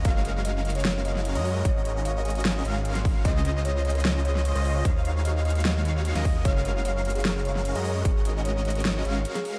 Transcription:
<<
  \new Staff \with { instrumentName = "Digital synth lead" } { \time 4/4 \key ges \lydian \tempo 4 = 150 f''2.~ f''16 ees''8. | ees''2~ ees''8 f''4. | ees''2.~ ees''16 ees''8. | f''2.~ f''16 ees''8. |
f''2.~ f''16 ees''8. | ees''2~ ees''8 f''4. | }
  \new Staff \with { instrumentName = "Kalimba" } { \time 4/4 \key ges \lydian f''16 r8. ees''8 r16 des''8 r16 ees''8 r16 des''8 r16 | des''8 r8 f''16 r16 aes''8 r4 r16 c'''8 r16 | ees''16 r8. des''8 r16 bes'8 r16 des''8 r16 bes'8 r16 | c''8 r8 ees''16 r16 ees''8 r4 r16 f''8 r16 |
des''16 r8. des''8 r16 aes'8 r16 des''8 r16 aes'8 r16 | bes'8 r8 des''16 r16 des''8 r4 r16 aes'8 r16 | }
  \new Staff \with { instrumentName = "Supersaw synth" } { \time 4/4 \key ges \lydian <aes des' ges' bes' f''>2.~ <aes des' ges' bes' f''>16 <aes des' ges' bes' ees''>8. | <des' ges'>2~ <des' ges'>8 <aes des' ges' bes' f''>4. | <aes des' f' c'' ees''>2.~ <aes des' f' c'' ees''>16 <aes des' f' c'' ees''>8. | <aes ees' ges' des'' f''>2.~ <aes ees' ges' des'' f''>16 <aes des' ges' bes' ees''>8. |
<aes des' ges' bes' f''>2.~ <aes des' ges' bes' f''>16 <aes des' ges' bes' ees''>8. | <aes des' ges' bes' ees''>2~ <aes des' ges' bes' ees''>8 <aes des' ges' bes' f''>4. | }
  \new Staff \with { instrumentName = "Detuned saw bass" } { \clef bass \time 4/4 \key ges \lydian ges,,2.~ ges,,16 ges,8. | aes,,2~ aes,,8 aes,,4. | des,2.~ des,16 des,8. | ees,2.~ ees,16 ees,8. |
ges,,2.~ ges,,16 ges,8. | aes,,2~ aes,,8 aes,,8 r4 | }
  \new DrumStaff \with { instrumentName = "Drums" } \drummode { \time 4/4 <hh bd>8 hh8 hh8 hh32 hh32 hh32 hh32 <hh sn>8 hh16 sn16 hh16 hh16 hho8 | <hh bd>8 hh8 hh8 hh32 hh32 hh32 hh32 <hh sn>8 hh8 hh16 <hh sn>16 <hho bd>8 | <hh bd>8 hh8 hh8 hh32 hh32 hh32 hh32 <hh sn>8 hh16 sn16 hh16 hh16 hho8 | <hh bd>8 hh8 hh8 hh32 hh32 hh32 hh32 <hh sn>8 hh8 hh16 <hh sn>16 <hho bd>8 |
<hh bd>8 hh8 hh8 hh32 hh32 hh32 hh32 <hh sn>8 hh16 sn16 hh16 hh16 hho8 | <hh bd>8 hh8 hh8 hh32 hh32 hh32 hh32 <hh sn>8 hh8 hh16 <hh sn>16 hho8 | }
>>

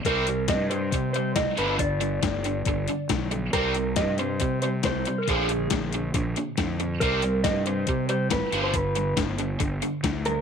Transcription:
<<
  \new Staff \with { instrumentName = "Clean electric guitar" } { \time 4/4 \key c \minor \tempo 4 = 138 bes'4 ees''8 c''4 c''8 ees''8 b'8 | d''2. r4 | bes'4 ees''8 c''4 c''8 c''8. bes'16 | aes'4 r2. |
bes'4 ees''8 c''4 c''8 b'8. c''16 | b'4 r2 r8 bes'8 | }
  \new Staff \with { instrumentName = "Overdriven electric guitar" } { \clef bass \time 4/4 \key c \minor <c g c'>8 <c g>8 <c g>8 <c g>8 <c g>8 <c g>8 <c g>8 <g, d f>8 | <g, d>8 <g, d>8 <g, d>8 <g, d>8 <g, d>8 <g, d>8 <g, d>8 <g, d>8 | <c g c'>8 <c g>8 <c g>8 <c g>8 <c g>8 <c g>8 <c g>8 <c g>8 | <bes, d f>8 <bes, d>8 <bes, d>8 <bes, d>8 <bes, d>8 <bes, d>8 <bes, d>8 <bes, d>8 |
<c g c'>8 <c g>8 <c g>8 <c g>8 <c g>8 <c g>8 <c g>8 <g, d f>8 | <g, d>8 <g, d>8 <g, d>8 <g, d>8 <g, d>8 <g, d>8 <g, d>8 <g, d>8 | }
  \new Staff \with { instrumentName = "Fingered electric bass" } { \clef bass \time 4/4 \key c \minor c,4 g,4 c4 c,16 r16 g,,8~ | g,,4 g,,4 g,,8 r8 b,,4 | c,4 g,4 c4 c,8 r8 | bes,,4 bes,,4 bes,,8 r8 f,4 |
c,4 g,4 c4 aes,,16 r16 g,,8~ | g,,4 g,,4 g,,8 r8 d,4 | }
  \new DrumStaff \with { instrumentName = "Drums" } \drummode { \time 4/4 <hh bd>8 hh8 <hh bd sn>8 hh8 <hh bd>8 hh8 <hh bd sn>8 hh8 | <hh bd>8 hh8 <hh bd sn>8 hh8 <hh bd>8 hh8 <hh bd sn>8 hh8 | <hh bd>8 hh8 <hh bd sn>8 hh8 <hh bd>8 hh8 <hh bd sn>8 hh8 | <hh bd>8 hh8 <hh bd sn>8 hh8 <hh bd>8 hh8 <hh bd sn>8 hh8 |
<hh bd>8 hh8 <hh bd sn>8 hh8 <hh bd>8 hh8 <hh bd sn>8 hh8 | <hh bd>8 hh8 <hh bd sn>8 hh8 <hh bd>8 hh8 <hh bd sn>8 hh8 | }
>>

